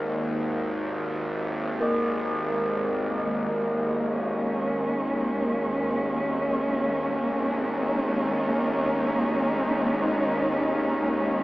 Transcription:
Already playing: synth drone G#1 D#2, singing bowl A#3 A#4
1.81 cello section G#3, singing bowl A#3 A#4
2.50 cello section A#3
4.08 cello section C#4
7.68 cello section D#4

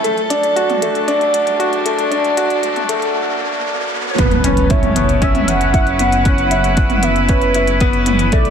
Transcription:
Already playing: string quartet A3 A4, riser
0.04 detuned saw bass D2, string quartet F#3, upright piano A3, closed hi-hat
0.18 closed hi-hat
0.30 upright piano D4, closed hi-hat
0.43 closed hi-hat
0.56 upright piano F#4, closed hi-hat
0.70 closed hi-hat, mid tom
0.82 upright piano A3, closed hi-hat
0.91 string quartet D4
0.95 closed hi-hat
1.08 upright piano D4, closed hi-hat
1.21 closed hi-hat
1.34 closed hi-hat
1.47 closed hi-hat
1.59 upright piano F#4, closed hi-hat
1.73 closed hi-hat
1.85 upright piano A3, closed hi-hat
1.99 closed hi-hat
2.11 upright piano D4, closed hi-hat
2.24 closed hi-hat
2.37 upright piano F#4, closed hi-hat
2.50 closed hi-hat
2.63 closed hi-hat
2.76 closed hi-hat, mid tom
2.89 upright piano A3, closed hi-hat
3.02 closed hi-hat
4.11 soft synth lead C#5
4.18 detuned saw bass F#1, upright piano B3, soft synth lead B4, kick, closed hi-hat, impact
4.31 string quartet C#4, closed hi-hat
4.44 upright piano C#4, closed hi-hat
4.57 closed hi-hat
4.70 upright piano E4, soft synth lead C#5, kick, closed hi-hat
4.83 closed hi-hat, mid tom
4.87 string quartet E4
4.96 upright piano B3, closed hi-hat
5.09 string quartet B4, closed hi-hat
5.22 upright piano C#4, soft synth lead E5, kick, closed hi-hat
5.35 closed hi-hat, mid tom
5.48 soft synth lead F#5, closed hi-hat
5.61 closed hi-hat
5.74 upright piano E4, kick, closed hi-hat
5.87 closed hi-hat
5.99 upright piano B3, soft synth lead F#5, closed hi-hat
6.12 closed hi-hat
6.25 upright piano C#4, kick, closed hi-hat
6.38 closed hi-hat
6.51 upright piano E4, closed hi-hat
6.64 closed hi-hat
6.77 kick, closed hi-hat
6.90 closed hi-hat, mid tom
7.03 upright piano B3, soft synth lead E5, closed hi-hat
7.16 closed hi-hat
7.29 upright piano C#4, soft synth lead B4, kick, closed hi-hat
7.42 closed hi-hat
7.54 upright piano E4, closed hi-hat
7.67 closed hi-hat
7.80 upright piano B3, kick, closed hi-hat
7.93 closed hi-hat
8.06 closed hi-hat, mid tom
8.19 closed hi-hat
8.32 detuned saw bass B1, upright piano A3, soft synth lead D5, kick, closed hi-hat
8.45 closed hi-hat

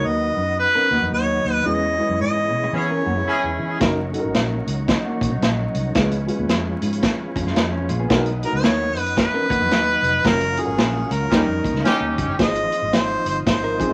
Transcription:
Already playing: upright piano F#3 B3 D#4 A#4, tonewheel organ F#3 B3 D#4
0.04 fingered electric bass D#2, harmonica D#5
0.37 fingered electric bass F#2
0.59 harmonica B4
0.75 clean electric guitar C#4 A#4
0.91 fingered electric bass D#2, clean electric guitar A#3 F#4
1.01 fingered electric bass F2, clean electric guitar F#3 D#4
1.12 fingered electric bass D#2, harmonica C#5
1.45 fingered electric bass D#2
1.53 harmonica B4
1.65 fingered electric bass E2, tonewheel organ E3 G#3 B3 C#4, upright piano G#3 C#4 E4 B4, harmonica D#5
1.98 upright piano G#3 C#4 E4 B4
2.09 fingered electric bass F#2
2.20 fingered electric bass G#2, harmonica D#5
2.52 fingered electric bass B2
2.64 clean electric guitar G#3 E4
2.73 fingered electric bass E3, clean electric guitar B3 G#4, horn section C#4 E4 G#4, harmonica C#5
2.91 clean electric guitar C#4 A#4
3.06 fingered electric bass F#2, clean electric guitar A#3 F#4
3.17 clean electric guitar G#3 E4
3.27 horn section C#4 E4 G#4
3.44 fingered electric bass E2
3.59 fingered electric bass E3
3.79 fingered electric bass F#1, tonewheel organ D#3 F#3 A#3, upright piano F#3 C#4 D#4 A#4, kick, snare, closed hi-hat
4.12 upright piano F#3 C#4 D#4 A4, closed hi-hat
4.20 upright piano A#4
4.24 fingered electric bass G#1
4.34 fingered electric bass A#1, snare, closed hi-hat
4.67 fingered electric bass C#2, closed hi-hat
4.88 clean electric guitar F#3 D#4, kick, snare, closed hi-hat
5.06 clean electric guitar A#3 F#4
5.21 fingered electric bass A#1, kick, closed hi-hat
5.31 fingered electric bass B1, clean electric guitar F#3 D#4
5.41 fingered electric bass A#1, snare, closed hi-hat
5.74 fingered electric bass C2, closed hi-hat
5.95 fingered electric bass C#2, tonewheel organ F3 G#3 B3, upright piano G#3 C#4 F4 B4, kick, snare, closed hi-hat
6.11 closed hi-hat
6.27 upright piano G#3 C#4 F4 B4, closed hi-hat
6.39 fingered electric bass D#2
6.49 fingered electric bass F2, snare, closed hi-hat
6.82 fingered electric bass G#2, closed hi-hat
6.93 closed hi-hat
7.03 kick, snare, closed hi-hat
7.36 fingered electric bass F2, clean electric guitar F3 C#4, kick, closed hi-hat
7.46 fingered electric bass F#2, clean electric guitar G#3 F4, snare
7.56 fingered electric bass F2, clean electric guitar D#4, snare, closed hi-hat
7.73 clean electric guitar F3 C#4
7.89 fingered electric bass A#1, clean electric guitar G#3 F4, closed hi-hat
8.00 clean electric guitar B3 G#4
8.09 fingered electric bass B1, upright piano F#3 B3 D#4 A#4, tonewheel organ F#3 D#4, kick, snare, closed hi-hat
8.26 closed hi-hat
8.43 upright piano F#3 B3 D#4 A#4, harmonica A#4, closed hi-hat
8.53 fingered electric bass C#2, harmonica C#5
8.64 fingered electric bass D#2, snare, closed hi-hat
8.96 fingered electric bass F#2, harmonica B4, closed hi-hat
9.06 closed hi-hat
9.17 harmonica B4, kick, snare, closed hi-hat
9.34 clean electric guitar C#4 A#4
9.50 fingered electric bass D#2, clean electric guitar A#3 F#4, kick, closed hi-hat
9.60 fingered electric bass F2, clean electric guitar F#3 D#4
9.70 fingered electric bass D#2, snare, closed hi-hat
10.02 fingered electric bass F1, closed hi-hat
10.24 fingered electric bass F#1, upright piano F#3 C#4 F4 A#4, tonewheel organ C#4 F4, harmonica A#4, kick, snare, closed hi-hat
10.41 closed hi-hat
10.57 upright piano F#3 C#4 F4 A4, harmonica G#4, closed hi-hat
10.65 fingered electric bass G#1, upright piano A#4
10.77 fingered electric bass A#1, snare, closed hi-hat
11.10 fingered electric bass C#2, harmonica A#4, closed hi-hat
11.30 fingered electric bass D#2, upright piano F3 C#4 D#4 A#4, tonewheel organ G3 D#4, horn section C#4 D#4 G4, kick, snare, closed hi-hat
11.38 upright piano G3
11.47 fingered electric bass F2
11.64 fingered electric bass D#2, kick, closed hi-hat
11.74 fingered electric bass C#2, snare
11.85 horn section C#4 D#4 G4, snare, closed hi-hat
12.01 fingered electric bass D#2
12.18 fingered electric bass F#1, kick, closed hi-hat
12.28 fingered electric bass G1
12.39 fingered electric bass G#1, tonewheel organ D#3 F3 C4 D#4, upright piano F3 C4 D#4 G#4, harmonica D#5, kick, snare, closed hi-hat
12.55 closed hi-hat
12.72 closed hi-hat
12.82 fingered electric bass G#1
12.93 harmonica C5, snare, closed hi-hat
13.25 fingered electric bass G1, harmonica C5, closed hi-hat
13.46 fingered electric bass G#1, harmonica C5, kick, snare, closed hi-hat
13.64 clean electric guitar A#4
13.79 upright piano F3 C4 D#4 G#4, clean electric guitar C4 G#4, kick, closed hi-hat
13.89 fingered electric bass G1

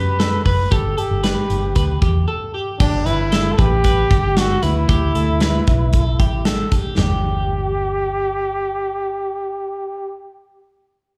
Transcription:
Already playing: fingered electric bass F#2, clean electric guitar G4, trumpet B4
0.20 clean electric guitar A4, snare, closed hi-hat
0.45 fingered electric bass F#1, trumpet B4, clean electric guitar B4, kick, open hi-hat
0.71 fingered electric bass G1, clean electric guitar G4, trumpet A4, kick, closed hi-hat
0.97 trumpet G4, clean electric guitar A4, closed hi-hat
1.11 fingered electric bass G1
1.24 clean electric guitar B4, snare, closed hi-hat
1.50 fingered electric bass G1, closed hi-hat
1.75 fingered electric bass D2, clean electric guitar B4, kick, closed hi-hat
2.02 fingered electric bass E2, clean electric guitar G4, kick, closed hi-hat
2.28 clean electric guitar A4
2.54 clean electric guitar G4
2.80 fingered electric bass G1, trumpet D4, clean electric guitar G4, kick, crash
3.06 fingered electric bass G1, trumpet E4, clean electric guitar B4, closed hi-hat
3.32 clean electric guitar A4, snare, closed hi-hat
3.52 trumpet A4
3.58 fingered electric bass A1, trumpet G4, clean electric guitar B4, kick, closed hi-hat
3.84 clean electric guitar B4, kick, closed hi-hat
4.10 fingered electric bass G1, clean electric guitar G4, kick, closed hi-hat
4.37 trumpet F#4, clean electric guitar A4, snare, closed hi-hat
4.63 fingered electric bass D2, trumpet E4, clean electric guitar B4, closed hi-hat
4.89 fingered electric bass D2, clean electric guitar G4, kick, closed hi-hat
5.15 fingered electric bass D2, clean electric guitar A4, closed hi-hat
5.40 clean electric guitar B4, snare, closed hi-hat
5.67 fingered electric bass B1, kick, closed hi-hat
5.93 clean electric guitar A4, kick, closed hi-hat
6.20 fingered electric bass A1, clean electric guitar G4, kick, closed hi-hat
6.45 clean electric guitar A4, snare, closed hi-hat
6.72 clean electric guitar G4, kick, closed hi-hat
6.97 fingered electric bass G1, clean electric guitar G4, trumpet G4, snare, floor tom

